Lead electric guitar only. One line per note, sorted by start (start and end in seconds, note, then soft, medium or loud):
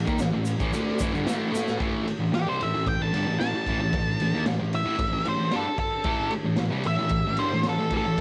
2.35 2.47 G4 medium
2.49 2.61 C5 medium
2.63 2.87 E5 medium
2.88 3.00 G5 medium
3.02 3.39 A5 medium
3.40 4.43 A5 medium
4.75 5.25 E5 loud
5.28 5.53 C5 medium
5.56 5.78 A4 medium
5.79 6.31 A4 loud
6.87 7.38 E5 loud
7.39 7.64 C5 medium
7.69 7.93 A4 loud
7.97 8.21 A4 loud